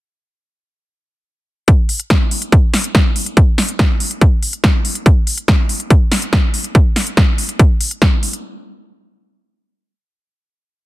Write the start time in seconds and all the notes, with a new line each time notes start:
1.68 kick, closed hi-hat
1.89 open hi-hat
2.00 closed hi-hat
2.10 kick, snare, closed hi-hat
2.31 open hi-hat
2.42 closed hi-hat
2.52 kick, closed hi-hat
2.74 snare, open hi-hat
2.84 closed hi-hat
2.95 kick, snare, closed hi-hat
3.16 open hi-hat
3.26 closed hi-hat
3.37 kick, closed hi-hat
3.58 snare, open hi-hat
3.69 closed hi-hat
3.79 kick, snare, closed hi-hat
4.00 open hi-hat
4.11 closed hi-hat
4.21 kick, closed hi-hat
4.43 open hi-hat
4.53 closed hi-hat
4.64 kick, snare, closed hi-hat
4.85 open hi-hat
4.95 closed hi-hat
5.06 kick, closed hi-hat
5.27 open hi-hat
5.38 closed hi-hat
5.48 kick, snare, closed hi-hat
5.69 open hi-hat
5.80 closed hi-hat
5.90 kick, closed hi-hat
6.12 snare, open hi-hat
6.22 closed hi-hat
6.33 kick, snare, closed hi-hat
6.54 open hi-hat
6.64 closed hi-hat
6.75 kick, closed hi-hat
6.96 snare, open hi-hat
7.07 closed hi-hat
7.17 kick, snare, closed hi-hat
7.38 open hi-hat
7.49 closed hi-hat
7.59 kick, closed hi-hat
7.81 open hi-hat
7.91 closed hi-hat
8.02 kick, snare, closed hi-hat
8.23 open hi-hat
8.33 closed hi-hat